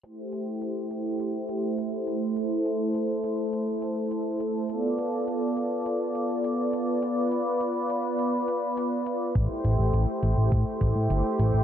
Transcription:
<<
  \new Staff \with { instrumentName = "Analog synth pad" } { \time 4/4 \key a \minor \tempo 4 = 103 << { <a e' c''>1~ | <a e' c''>1 | <b f' d''>1~ | <b f' d''>1 |
<a e' c''>1 | } \\ { g'1 | a'1~ | a'1 | b'1 |
g'1 | } >> }
  \new Staff \with { instrumentName = "Analog synth bass" } { \clef bass \time 4/4 \key a \minor r1 | r1 | r1 | r1 |
a,,16 r16 a,,16 a,,16 a,,16 r16 a,,16 a,,16 a,,16 r16 a,,16 a,16 g,,16 r16 a,,16 a,,16 | }
  \new DrumStaff \with { instrumentName = "Drums" } \drummode { \time 4/4 hh8 hh8 hh8 hh8 hh8 hh8 hh8 hh8 | hh8 hh8 hh8 hh8 hh8 hh8 hh8 hh8 | hh8 hh8 hh8 hh8 hh8 hh8 hh8 hh8 | hh8 hh8 hh8 hh8 hh8 hh8 hh8 hh8 |
<hh bd>8 hh8 hh8 hh8 <hh bd>8 <hh bd>8 hh8 hh8 | }
>>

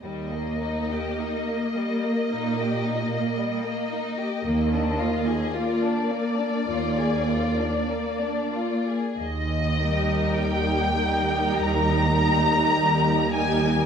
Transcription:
<<
  \new Staff \with { instrumentName = "Violin section" } { \time 4/4 \key ees \major \tempo 4 = 52 ees''1~ | ees''4 d''2. | ees''4 g''4 bes''4. aes''8 | }
  \new Staff \with { instrumentName = "Violin section" } { \time 4/4 \key ees \major g16 bes16 ees'16 g'16 ees'16 bes16 g16 bes16 ees'16 g'16 ees'16 bes16 g16 bes16 ees'16 g'16 | bes16 d'16 f'16 aes'16 f'16 d'16 bes16 d'16 f'16 aes'16 f'16 d'16 bes16 d'16 f'16 aes'16 | r8 <g' bes'>4 <g' bes'>4 <g' bes'>4 <g' bes'>8 | }
  \new Staff \with { instrumentName = "Viola section" } { \time 4/4 \key ees \major bes1 | bes1 | r8 <g ees'>4 <g ees'>4 <g ees'>4 <g ees'>8 | }
  \new Staff \with { instrumentName = "Cello section" } { \clef bass \time 4/4 \key ees \major ees,4 r4 bes,4 r4 | ees,4 r4 ees,4 r4 | ees,4 ees,4 ees,4 ees,4 | }
  \new Staff \with { instrumentName = "Double bass section" } { \clef bass \time 4/4 \key ees \major r1 | r1 | ees,4 ees,4 ees,4 ees,4 | }
>>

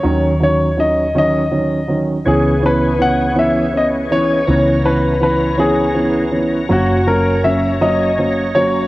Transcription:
<<
  \new Staff \with { instrumentName = "Grand piano" } { \time 6/8 \key cis \dorian \tempo 4. = 54 cis''8 cis''8 dis''8 dis''4 r8 | gis'8 b'8 fis''8 e''8 dis''8 cis''8~ | cis''8 b'8 b'8 gis'4 r8 | fis'8 ais'8 e''8 dis''4 cis''8 | }
  \new Staff \with { instrumentName = "Tonewheel organ" } { \time 6/8 \key cis \dorian << { r2. | gis'2. | ais''2.~ | ais''2. | } \\ { r2. | cis''2.~ | cis''2.~ | cis''2. | } >> }
  \new Staff \with { instrumentName = "Tonewheel organ" } { \clef bass \time 6/8 \key cis \dorian r2. | <e b>2.~ | <e b>2. | <fis cis'>2. | }
  \new Staff \with { instrumentName = "Upright piano" } { \time 6/8 \key cis \dorian <dis fis cis'>8 <dis fis cis'>8 <dis fis cis'>8 <dis fis cis'>8 <dis fis cis'>8 <dis fis cis'>8 | <e b cis'>8 <e b cis'>8 <e b cis'>8 <e b cis'>8 <b cis'>8 <e b cis'>8 | <e b cis'>8 <e b cis'>8 <e b cis'>8 <e b cis'>8 <e b cis'>8 <e b cis'>8 | <fis ais cis'>8 <fis ais cis'>8 <fis ais cis'>8 <fis ais cis'>8 <fis ais cis'>8 <fis ais cis'>8 | }
  \new Staff \with { instrumentName = "Fretless electric bass" } { \clef bass \time 6/8 \key cis \dorian dis,2. | cis,2. | cis,2. | fis,,2. | }
>>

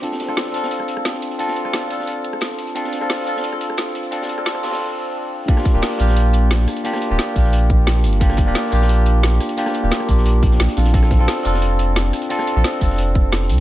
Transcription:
<<
  \new Staff \with { instrumentName = "Tine electric piano" } { \time 4/4 \key ees \lydian \tempo 4 = 176 <c' d' f' a'>8. <c' d' f' a'>8. <c' d' f' a'>2~ <c' d' f' a'>8 | <c' d' f' a'>8. <c' d' f' a'>8. <c' d' f' a'>2~ <c' d' f' a'>8 | <c' d' f' a'>8. <c' d' f' a'>8. <c' d' f' a'>2~ <c' d' f' a'>8 | <c' d' f' a'>8. <c' d' f' a'>8. <c' d' f' a'>2~ <c' d' f' a'>8 |
<bes d' f' g'>8. <bes d' f' g'>8. <bes d' f' g'>2~ <bes d' f' g'>8 | <bes d' f' g'>8. <bes d' f' g'>8. <bes d' f' g'>2~ <bes d' f' g'>8 | <bes d' f' g'>8. <bes d' f' g'>8. <bes d' f' g'>2~ <bes d' f' g'>8 | <bes d' f' g'>8. <bes d' f' g'>8. <bes d' f' g'>2 <c' d' f' a'>8 |
<c' d' f' a'>8. <c' d' f' a'>8. <c' d' f' a'>2~ <c' d' f' a'>8 | <c' d' f' a'>8. <c' d' f' a'>8. <c' d' f' a'>2~ <c' d' f' a'>8 | }
  \new Staff \with { instrumentName = "Sub bass" } { \clef bass \time 4/4 \key ees \lydian r1 | r1 | r1 | r1 |
r8. ees,,16 r8 bes,,2 r8 | r8. ees,,16 r8 bes,,2 g,,8~ | g,,8. ees,,16 r8 bes,,2 r8 | r8. ees,,16 r8 bes,,4 bes,,8 bes,,16 r16 bes,,8~ |
bes,,8. bes,,16 r8 f,,2 r8 | r8. bes,,16 r8 f,,2 d,8 | }
  \new DrumStaff \with { instrumentName = "Drums" } \drummode { \time 4/4 hh16 sn16 <hh sn>16 ss16 <hh hho sn>8 hh16 sn16 hh16 ss16 hh16 ss16 <hh sn>16 sn16 hh16 hh16 | hh16 sn16 hh16 ss16 <hh sn>16 hh16 hh16 sn16 hh8 hh16 ss16 <hh sn>16 sn16 hh16 hh16 | hh16 sn16 <hh sn>16 ss16 <hh hho sn>8 hh16 sn16 hh16 ss16 hh16 ss16 <hh sn>16 sn16 hh16 hh16 | hh16 sn16 hh16 ss16 <hh sn>16 <hh ss>16 <hh hho sn>16 <hho sn>16 r4 r4 |
<hh bd>16 <ss sn>16 <hh bd sn>8 <hh hho sn>8 <hh hho>16 sn16 hh8 hh8 <hh sn>16 sn16 <hh hho ss>16 hh16 | hh16 <ss sn>16 hh8 <hh sn>16 hh16 <hh hho bd>16 sn16 hh8 <hh bd>8 <hh sn>16 sn16 <hh hho>16 hh16 | <hh bd>16 <ss sn>16 <hh bd sn>8 <hh hho sn>8 <hh hho>16 sn16 hh8 hh8 <hh sn>16 sn16 <hh hho ss>16 hh16 | hh16 <ss sn>16 hh8 <hh sn>16 ss16 <hh hho bd>16 sn16 hh8 <hh bd>16 sn16 <hh sn>16 hh16 <hho sn>16 <hh sn>16 |
<hh bd>16 <ss sn>16 <hh bd sn>8 <hh hho sn>8 <hh hho>16 sn16 hh8 hh8 <hh sn>16 sn16 <hh hho ss>16 hh16 | hh16 <ss sn>16 hh8 <hh sn>16 hh16 <hh hho bd>16 sn16 hh8 <hh bd>8 <hh sn>16 sn16 <hh hho>8 | }
>>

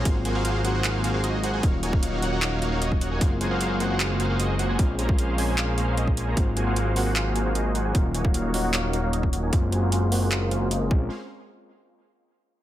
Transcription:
<<
  \new Staff \with { instrumentName = "Supersaw synth" } { \time 4/4 \key aes \mixolydian \tempo 4 = 152 <bes ges' aes'>16 r16 <bes ges' aes' c'' aes''>16 <bes ges' aes' c'' f''>16 <bes ges' aes' c'' f''>8 <bes ges' aes' c'' ges''>16 <bes ges' aes' c'' ges''>16 <bes ges' aes' c'' f''>8 <bes ges' aes' c'' f''>16 <bes ges' aes' c'' f''>16 <bes ges' aes' c'' ees''>8 <bes ges' aes' c'' ges''>16 <bes ges' aes' c'' aes''>16 | <bes ees' f''>16 r16 <bes ees' ges' des'' aes''>16 r16 <bes ees' ges' des'' f''>8 <bes ees' ges' des'' ges''>16 <bes ees' ges' des'' ges''>16 <bes ees' ges' des'' f''>8 <bes ees' ges' des'' f''>16 <bes ees' ges' des'' f''>16 <bes ees' ges' des'' ees''>8 <bes ees' ges' des'' ges''>16 <bes ees' ges' des'' aes''>16 | r8 <bes ges' aes' c'' aes''>16 <bes ges' aes' c'' f''>16 <bes ges' aes' c'' f''>8 <bes ges' aes' c'' ges''>16 <bes ges' aes' c'' ges''>16 <bes ges' aes' c'' f''>8 <bes ges' aes' c'' f''>16 <bes ges' aes' c'' f''>16 <bes ges' aes' c'' ees''>8 <bes ges' aes' c'' ges''>16 <bes ges' aes' c'' aes''>16 | <bes des' f''>16 r16 <bes des' aes' c'' bes''>16 <bes des' aes' c'' f''>16 <bes des' aes' c'' f''>8 <bes des' aes' c'' aes''>16 <bes des' aes' c'' aes''>16 <bes des' aes' c'' f''>8 <bes des' aes' c'' f''>16 <bes des' aes' c'' f''>16 <bes des' aes' c'' ees''>8 <bes des' aes' c'' aes''>16 <bes des' aes' c'' bes''>16 |
<bes ges' aes' c'' f''>16 r16 <bes ges' aes' c'' aes''>16 <bes ges' aes' c'' f''>16 <bes ges' aes' c'' f''>8 <bes ges' aes' c'' ges''>16 <bes ges' aes' c'' ges''>16 <bes ges' aes' c'' f''>8 <bes ges' aes' c'' f''>16 <bes ges' aes' c'' f''>16 <bes ges' aes' c'' ees''>8 <bes ges' aes' c'' ges''>16 <bes ges' aes' c'' aes''>16 | ges'16 r16 <bes ees' ges' des'' aes''>16 <bes des'' f''>16 <bes ees' ges' des'' f''>8 <bes ees' ges' des'' ges''>16 <bes ees' ges' des'' ges''>16 <bes ees' ges' des'' f''>8 <bes ees' ges' des'' f''>16 <bes ees' ges' des'' f''>16 <bes ees' ges' des'' ees''>8 <bes ees' ges' des'' ges''>16 <bes ees' ges' des'' aes''>16 | ges'16 r16 <bes ges' aes' c'' aes''>16 <bes ges' aes' c'' f''>16 <bes ges' aes' c'' f''>8 <bes ges' aes' c'' ges''>16 <bes ges' aes' c'' ges''>16 <bes ges' aes' c'' f''>8 <bes ges' aes' c'' f''>16 <bes ges' aes' c'' f''>16 <bes ges' aes' c'' ees''>8 <bes des' aes' c''>8 | r1 | }
  \new Staff \with { instrumentName = "Tine electric piano" } { \time 4/4 \key aes \mixolydian <ges bes c' f'>4. <ges bes c' ges'>2~ <ges bes c' ges'>8 | <ges bes des' f'>4. <ges bes des' ges'>2~ <ges bes des' ges'>8 | <aes bes c' f'>4. <aes bes c' ges'>2~ <aes bes c' ges'>8 | <aes c' des' f'>4. <aes c' des' aes'>2~ <aes c' des' aes'>8 |
<ges bes c' f'>4. <ges bes c' ges'>2~ <ges bes c' ges'>8 | <ges bes des' f'>4. <ges bes des' ges'>2~ <ges bes des' ges'>8 | <aes bes c' f'>4. <aes bes c' ges'>2 <aes c' des' f'>8 | r1 | }
  \new Staff \with { instrumentName = "Analog synth bass" } { \clef bass \time 4/4 \key aes \mixolydian aes,,1 | ees,,1 | ges,,1 | bes,,1 |
aes,,1 | ees,,1 | ges,,2.~ ges,,8 bes,,8 | r1 | }
  \new DrumStaff \with { instrumentName = "Drums" } \drummode { \time 4/4 <hh bd>8 hh8 hh8 hh8 <hc hh>8 hh8 hh8 hh8 | <hh bd>8 hh16 bd16 hh8 hh8 <hc hh>8 hh8 hh16 bd16 hh8 | <hh bd>8 hh8 hh8 hh8 <hc hh>8 hh8 hh8 hh8 | <hh bd>8 hh16 bd16 hh8 hho8 <hc hh>8 hh8 hh16 bd16 hh8 |
<hh bd>8 hh8 hh8 hho8 <hc hh>8 hh8 hh8 hh8 | <hh bd>8 hh16 bd16 hh8 hho8 <hc hh>8 hh8 hh16 bd16 hh8 | <hh bd>8 hh8 hh8 hho8 <hc hh>8 hh8 hh8 bd8 | r4 r4 r4 r4 | }
>>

